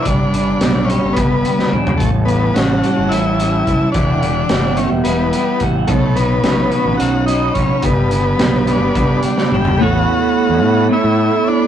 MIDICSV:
0, 0, Header, 1, 6, 480
1, 0, Start_track
1, 0, Tempo, 556586
1, 48, Time_signature, 7, 3, 24, 8
1, 10066, End_track
2, 0, Start_track
2, 0, Title_t, "Tonewheel organ"
2, 0, Program_c, 0, 16
2, 65, Note_on_c, 0, 83, 66
2, 74, Note_on_c, 0, 55, 65
2, 75, Note_on_c, 0, 74, 64
2, 1718, Note_off_c, 0, 83, 0
2, 1723, Note_off_c, 0, 74, 0
2, 1743, Note_on_c, 0, 81, 69
2, 1750, Note_on_c, 0, 73, 57
2, 3386, Note_off_c, 0, 55, 0
2, 3398, Note_off_c, 0, 81, 0
2, 3402, Note_off_c, 0, 73, 0
2, 3408, Note_on_c, 0, 79, 66
2, 3415, Note_on_c, 0, 76, 61
2, 3415, Note_on_c, 0, 78, 68
2, 5071, Note_off_c, 0, 79, 0
2, 5075, Note_off_c, 0, 76, 0
2, 5075, Note_off_c, 0, 78, 0
2, 5085, Note_on_c, 0, 63, 58
2, 5085, Note_on_c, 0, 83, 72
2, 5087, Note_on_c, 0, 73, 63
2, 6750, Note_off_c, 0, 63, 0
2, 6751, Note_off_c, 0, 73, 0
2, 6774, Note_on_c, 0, 67, 64
2, 6776, Note_on_c, 0, 74, 65
2, 8413, Note_off_c, 0, 83, 0
2, 8429, Note_on_c, 0, 73, 59
2, 8430, Note_on_c, 0, 69, 71
2, 8434, Note_off_c, 0, 67, 0
2, 8435, Note_off_c, 0, 74, 0
2, 8435, Note_on_c, 0, 83, 78
2, 10066, Note_off_c, 0, 69, 0
2, 10066, Note_off_c, 0, 73, 0
2, 10066, Note_off_c, 0, 83, 0
2, 10066, End_track
3, 0, Start_track
3, 0, Title_t, "Transistor combo organ"
3, 0, Program_c, 1, 18
3, 23, Note_on_c, 1, 62, 84
3, 731, Note_on_c, 1, 61, 79
3, 777, Note_off_c, 1, 62, 0
3, 975, Note_on_c, 1, 59, 84
3, 996, Note_off_c, 1, 61, 0
3, 1496, Note_off_c, 1, 59, 0
3, 1700, Note_on_c, 1, 57, 84
3, 1814, Note_off_c, 1, 57, 0
3, 1943, Note_on_c, 1, 59, 82
3, 2190, Note_on_c, 1, 66, 79
3, 2202, Note_off_c, 1, 59, 0
3, 2664, Note_on_c, 1, 64, 90
3, 2693, Note_off_c, 1, 66, 0
3, 3361, Note_off_c, 1, 64, 0
3, 3379, Note_on_c, 1, 62, 88
3, 4116, Note_on_c, 1, 61, 77
3, 4135, Note_off_c, 1, 62, 0
3, 4227, Note_off_c, 1, 61, 0
3, 4345, Note_on_c, 1, 59, 73
3, 4862, Note_off_c, 1, 59, 0
3, 5064, Note_on_c, 1, 57, 79
3, 5310, Note_on_c, 1, 59, 82
3, 5323, Note_off_c, 1, 57, 0
3, 6005, Note_off_c, 1, 59, 0
3, 6012, Note_on_c, 1, 66, 91
3, 6252, Note_off_c, 1, 66, 0
3, 6261, Note_on_c, 1, 63, 74
3, 6497, Note_off_c, 1, 63, 0
3, 6502, Note_on_c, 1, 61, 76
3, 6763, Note_off_c, 1, 61, 0
3, 6766, Note_on_c, 1, 59, 76
3, 7522, Note_on_c, 1, 62, 72
3, 7932, Note_off_c, 1, 59, 0
3, 8226, Note_on_c, 1, 67, 75
3, 8245, Note_off_c, 1, 62, 0
3, 8463, Note_on_c, 1, 66, 89
3, 8464, Note_off_c, 1, 67, 0
3, 9379, Note_off_c, 1, 66, 0
3, 9424, Note_on_c, 1, 64, 84
3, 9899, Note_on_c, 1, 62, 80
3, 9907, Note_off_c, 1, 64, 0
3, 10066, Note_off_c, 1, 62, 0
3, 10066, End_track
4, 0, Start_track
4, 0, Title_t, "Clean electric guitar"
4, 0, Program_c, 2, 27
4, 42, Note_on_c, 2, 43, 69
4, 283, Note_on_c, 2, 50, 61
4, 532, Note_on_c, 2, 59, 65
4, 761, Note_on_c, 2, 55, 62
4, 997, Note_off_c, 2, 50, 0
4, 1007, Note_on_c, 2, 50, 68
4, 1244, Note_off_c, 2, 43, 0
4, 1247, Note_off_c, 2, 55, 0
4, 1251, Note_on_c, 2, 55, 65
4, 1490, Note_on_c, 2, 62, 70
4, 1727, Note_off_c, 2, 50, 0
4, 1728, Note_off_c, 2, 62, 0
4, 1729, Note_off_c, 2, 59, 0
4, 1731, Note_on_c, 2, 45, 65
4, 1757, Note_off_c, 2, 55, 0
4, 1975, Note_on_c, 2, 52, 62
4, 2214, Note_on_c, 2, 61, 59
4, 2439, Note_on_c, 2, 55, 60
4, 2666, Note_off_c, 2, 52, 0
4, 2676, Note_on_c, 2, 52, 62
4, 2905, Note_off_c, 2, 55, 0
4, 2915, Note_on_c, 2, 55, 61
4, 2928, Note_off_c, 2, 45, 0
4, 3144, Note_on_c, 2, 64, 66
4, 3382, Note_off_c, 2, 52, 0
4, 3392, Note_on_c, 2, 52, 71
4, 3395, Note_off_c, 2, 64, 0
4, 3401, Note_off_c, 2, 55, 0
4, 3411, Note_off_c, 2, 61, 0
4, 3628, Note_off_c, 2, 52, 0
4, 3638, Note_on_c, 2, 52, 65
4, 3879, Note_on_c, 2, 59, 63
4, 4126, Note_on_c, 2, 55, 58
4, 4366, Note_off_c, 2, 52, 0
4, 4376, Note_on_c, 2, 52, 70
4, 4606, Note_off_c, 2, 55, 0
4, 4617, Note_on_c, 2, 55, 67
4, 4856, Note_on_c, 2, 66, 68
4, 5087, Note_on_c, 2, 47, 72
4, 5092, Note_off_c, 2, 52, 0
4, 5092, Note_off_c, 2, 55, 0
4, 5092, Note_off_c, 2, 66, 0
4, 5341, Note_on_c, 2, 51, 64
4, 5576, Note_off_c, 2, 59, 0
4, 5580, Note_on_c, 2, 61, 70
4, 5803, Note_on_c, 2, 54, 70
4, 6028, Note_off_c, 2, 51, 0
4, 6039, Note_on_c, 2, 51, 66
4, 6279, Note_off_c, 2, 54, 0
4, 6288, Note_off_c, 2, 47, 0
4, 6289, Note_on_c, 2, 54, 66
4, 6525, Note_on_c, 2, 63, 62
4, 6753, Note_on_c, 2, 43, 70
4, 6764, Note_off_c, 2, 51, 0
4, 6767, Note_off_c, 2, 63, 0
4, 6769, Note_off_c, 2, 54, 0
4, 6774, Note_off_c, 2, 61, 0
4, 6991, Note_on_c, 2, 50, 60
4, 7235, Note_on_c, 2, 59, 68
4, 7487, Note_on_c, 2, 55, 61
4, 7715, Note_off_c, 2, 50, 0
4, 7725, Note_on_c, 2, 50, 66
4, 7960, Note_off_c, 2, 43, 0
4, 7960, Note_off_c, 2, 55, 0
4, 7970, Note_on_c, 2, 55, 66
4, 8221, Note_on_c, 2, 62, 62
4, 8441, Note_off_c, 2, 59, 0
4, 8443, Note_off_c, 2, 50, 0
4, 8446, Note_on_c, 2, 57, 90
4, 8449, Note_off_c, 2, 55, 0
4, 8454, Note_off_c, 2, 62, 0
4, 8455, Note_on_c, 2, 59, 90
4, 8458, Note_on_c, 2, 64, 80
4, 8465, Note_on_c, 2, 69, 100
4, 8477, Note_on_c, 2, 73, 111
4, 9383, Note_off_c, 2, 57, 0
4, 9394, Note_on_c, 2, 57, 75
4, 9396, Note_off_c, 2, 64, 0
4, 9400, Note_off_c, 2, 69, 0
4, 9404, Note_off_c, 2, 59, 0
4, 9406, Note_off_c, 2, 73, 0
4, 9407, Note_on_c, 2, 59, 77
4, 9419, Note_on_c, 2, 64, 88
4, 9422, Note_on_c, 2, 69, 74
4, 9434, Note_on_c, 2, 73, 83
4, 10066, Note_off_c, 2, 57, 0
4, 10066, Note_off_c, 2, 59, 0
4, 10066, Note_off_c, 2, 64, 0
4, 10066, Note_off_c, 2, 69, 0
4, 10066, Note_off_c, 2, 73, 0
4, 10066, End_track
5, 0, Start_track
5, 0, Title_t, "Fingered electric bass"
5, 0, Program_c, 3, 33
5, 51, Note_on_c, 3, 31, 101
5, 469, Note_off_c, 3, 31, 0
5, 528, Note_on_c, 3, 35, 92
5, 842, Note_off_c, 3, 35, 0
5, 894, Note_on_c, 3, 31, 77
5, 996, Note_off_c, 3, 31, 0
5, 1011, Note_on_c, 3, 31, 95
5, 1219, Note_off_c, 3, 31, 0
5, 1488, Note_on_c, 3, 37, 84
5, 1697, Note_off_c, 3, 37, 0
5, 1727, Note_on_c, 3, 33, 84
5, 2147, Note_off_c, 3, 33, 0
5, 2209, Note_on_c, 3, 33, 91
5, 2418, Note_off_c, 3, 33, 0
5, 2574, Note_on_c, 3, 31, 77
5, 2675, Note_off_c, 3, 31, 0
5, 2697, Note_on_c, 3, 33, 83
5, 3112, Note_off_c, 3, 33, 0
5, 3165, Note_on_c, 3, 30, 73
5, 3270, Note_off_c, 3, 30, 0
5, 3403, Note_on_c, 3, 28, 96
5, 3824, Note_off_c, 3, 28, 0
5, 3883, Note_on_c, 3, 31, 102
5, 4200, Note_off_c, 3, 31, 0
5, 4241, Note_on_c, 3, 28, 82
5, 4349, Note_off_c, 3, 28, 0
5, 4365, Note_on_c, 3, 28, 100
5, 4576, Note_off_c, 3, 28, 0
5, 4837, Note_on_c, 3, 33, 68
5, 5051, Note_off_c, 3, 33, 0
5, 5075, Note_on_c, 3, 35, 98
5, 5500, Note_off_c, 3, 35, 0
5, 5546, Note_on_c, 3, 35, 87
5, 5765, Note_off_c, 3, 35, 0
5, 5913, Note_on_c, 3, 33, 76
5, 6025, Note_off_c, 3, 33, 0
5, 6036, Note_on_c, 3, 35, 83
5, 6461, Note_off_c, 3, 35, 0
5, 6523, Note_on_c, 3, 35, 73
5, 6630, Note_off_c, 3, 35, 0
5, 6757, Note_on_c, 3, 31, 107
5, 7181, Note_off_c, 3, 31, 0
5, 7233, Note_on_c, 3, 35, 97
5, 7554, Note_off_c, 3, 35, 0
5, 7593, Note_on_c, 3, 31, 69
5, 7705, Note_off_c, 3, 31, 0
5, 7722, Note_on_c, 3, 31, 86
5, 7935, Note_off_c, 3, 31, 0
5, 8211, Note_on_c, 3, 31, 83
5, 8419, Note_off_c, 3, 31, 0
5, 8455, Note_on_c, 3, 33, 87
5, 8661, Note_off_c, 3, 33, 0
5, 9049, Note_on_c, 3, 40, 73
5, 9169, Note_off_c, 3, 40, 0
5, 9169, Note_on_c, 3, 45, 80
5, 9377, Note_off_c, 3, 45, 0
5, 9522, Note_on_c, 3, 45, 82
5, 9733, Note_off_c, 3, 45, 0
5, 10066, End_track
6, 0, Start_track
6, 0, Title_t, "Drums"
6, 47, Note_on_c, 9, 42, 80
6, 50, Note_on_c, 9, 36, 98
6, 133, Note_off_c, 9, 42, 0
6, 136, Note_off_c, 9, 36, 0
6, 292, Note_on_c, 9, 42, 62
6, 378, Note_off_c, 9, 42, 0
6, 525, Note_on_c, 9, 42, 81
6, 528, Note_on_c, 9, 38, 101
6, 612, Note_off_c, 9, 42, 0
6, 614, Note_off_c, 9, 38, 0
6, 774, Note_on_c, 9, 42, 61
6, 860, Note_off_c, 9, 42, 0
6, 1005, Note_on_c, 9, 42, 89
6, 1008, Note_on_c, 9, 36, 112
6, 1091, Note_off_c, 9, 42, 0
6, 1094, Note_off_c, 9, 36, 0
6, 1250, Note_on_c, 9, 42, 62
6, 1337, Note_off_c, 9, 42, 0
6, 1372, Note_on_c, 9, 38, 53
6, 1458, Note_off_c, 9, 38, 0
6, 1495, Note_on_c, 9, 47, 56
6, 1582, Note_off_c, 9, 47, 0
6, 1611, Note_on_c, 9, 43, 98
6, 1698, Note_off_c, 9, 43, 0
6, 1726, Note_on_c, 9, 42, 71
6, 1728, Note_on_c, 9, 36, 96
6, 1812, Note_off_c, 9, 42, 0
6, 1814, Note_off_c, 9, 36, 0
6, 1969, Note_on_c, 9, 42, 56
6, 2055, Note_off_c, 9, 42, 0
6, 2207, Note_on_c, 9, 42, 82
6, 2210, Note_on_c, 9, 38, 97
6, 2294, Note_off_c, 9, 42, 0
6, 2296, Note_off_c, 9, 38, 0
6, 2445, Note_on_c, 9, 42, 45
6, 2532, Note_off_c, 9, 42, 0
6, 2689, Note_on_c, 9, 42, 80
6, 2775, Note_off_c, 9, 42, 0
6, 2930, Note_on_c, 9, 42, 62
6, 3016, Note_off_c, 9, 42, 0
6, 3167, Note_on_c, 9, 36, 61
6, 3167, Note_on_c, 9, 42, 51
6, 3253, Note_off_c, 9, 36, 0
6, 3253, Note_off_c, 9, 42, 0
6, 3401, Note_on_c, 9, 42, 76
6, 3405, Note_on_c, 9, 36, 94
6, 3487, Note_off_c, 9, 42, 0
6, 3491, Note_off_c, 9, 36, 0
6, 3644, Note_on_c, 9, 42, 57
6, 3731, Note_off_c, 9, 42, 0
6, 3875, Note_on_c, 9, 42, 90
6, 3878, Note_on_c, 9, 38, 110
6, 3961, Note_off_c, 9, 42, 0
6, 3964, Note_off_c, 9, 38, 0
6, 4113, Note_on_c, 9, 42, 57
6, 4199, Note_off_c, 9, 42, 0
6, 4354, Note_on_c, 9, 42, 81
6, 4440, Note_off_c, 9, 42, 0
6, 4595, Note_on_c, 9, 42, 63
6, 4681, Note_off_c, 9, 42, 0
6, 4829, Note_on_c, 9, 42, 53
6, 4837, Note_on_c, 9, 36, 58
6, 4915, Note_off_c, 9, 42, 0
6, 4923, Note_off_c, 9, 36, 0
6, 5068, Note_on_c, 9, 42, 75
6, 5076, Note_on_c, 9, 36, 94
6, 5154, Note_off_c, 9, 42, 0
6, 5163, Note_off_c, 9, 36, 0
6, 5317, Note_on_c, 9, 42, 61
6, 5403, Note_off_c, 9, 42, 0
6, 5551, Note_on_c, 9, 42, 79
6, 5554, Note_on_c, 9, 38, 100
6, 5637, Note_off_c, 9, 42, 0
6, 5640, Note_off_c, 9, 38, 0
6, 5792, Note_on_c, 9, 42, 47
6, 5878, Note_off_c, 9, 42, 0
6, 6036, Note_on_c, 9, 42, 85
6, 6122, Note_off_c, 9, 42, 0
6, 6278, Note_on_c, 9, 42, 60
6, 6364, Note_off_c, 9, 42, 0
6, 6513, Note_on_c, 9, 42, 54
6, 6517, Note_on_c, 9, 36, 62
6, 6599, Note_off_c, 9, 42, 0
6, 6603, Note_off_c, 9, 36, 0
6, 6748, Note_on_c, 9, 42, 78
6, 6756, Note_on_c, 9, 36, 90
6, 6834, Note_off_c, 9, 42, 0
6, 6843, Note_off_c, 9, 36, 0
6, 6994, Note_on_c, 9, 42, 57
6, 7081, Note_off_c, 9, 42, 0
6, 7239, Note_on_c, 9, 42, 75
6, 7241, Note_on_c, 9, 38, 110
6, 7325, Note_off_c, 9, 42, 0
6, 7328, Note_off_c, 9, 38, 0
6, 7479, Note_on_c, 9, 42, 53
6, 7566, Note_off_c, 9, 42, 0
6, 7722, Note_on_c, 9, 36, 108
6, 7724, Note_on_c, 9, 42, 74
6, 7809, Note_off_c, 9, 36, 0
6, 7810, Note_off_c, 9, 42, 0
6, 7957, Note_on_c, 9, 42, 57
6, 8043, Note_off_c, 9, 42, 0
6, 8086, Note_on_c, 9, 38, 54
6, 8173, Note_off_c, 9, 38, 0
6, 8207, Note_on_c, 9, 47, 57
6, 8293, Note_off_c, 9, 47, 0
6, 8323, Note_on_c, 9, 43, 85
6, 8409, Note_off_c, 9, 43, 0
6, 10066, End_track
0, 0, End_of_file